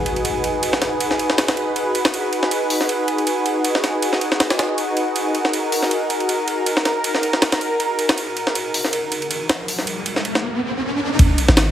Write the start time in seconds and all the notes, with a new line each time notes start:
Already playing: D#4 F#4 G#4 B4, impact
0.06 ride
0.16 ride
0.25 ride
0.44 ride
0.63 ride
0.73 snare
0.82 snare, ride
1.00 ride
1.11 snare
1.19 ride
1.30 snare
1.38 snare, ride
1.48 snare, ride
1.57 ride
1.76 ride
1.95 ride
2.05 snare, ride
2.14 ride
2.33 ride
2.43 snare
2.51 ride
2.70 open hi-hat
2.81 snare
2.89 ride
3.08 ride
3.18 ride
3.27 ride
3.46 ride
3.65 ride
3.75 snare
3.84 snare, ride
4.02 ride
4.13 snare
4.21 ride
4.32 snare
4.40 snare, ride
4.50 snare, ride
4.59 snare, ride
4.78 ride
4.97 ride
5.15 A#4, ride
5.35 ride
5.45 snare
5.53 ride
5.72 open hi-hat
5.83 snare
5.91 ride
6.10 ride
6.20 ride
6.29 ride
6.48 ride
6.66 ride
6.77 snare
6.85 snare, ride
7.04 ride
7.15 snare
7.23 ride
7.33 snare
7.42 snare, ride
7.52 snare, ride
7.61 ride
7.80 ride
7.99 ride
8.09 snare, ride
8.18 ride, riser
8.37 ride
8.47 snare
8.55 ride
8.74 open hi-hat
8.84 snare
8.93 ride
9.12 ride
9.22 ride
9.31 ride
9.49 snare, ride
9.68 open hi-hat
9.79 snare
9.87 ride
10.06 ride
10.16 snare
10.25 ride
10.35 snare
11.19 kick, ride, sub drop
11.38 ride
11.48 G#1, snare
11.57 snare, ride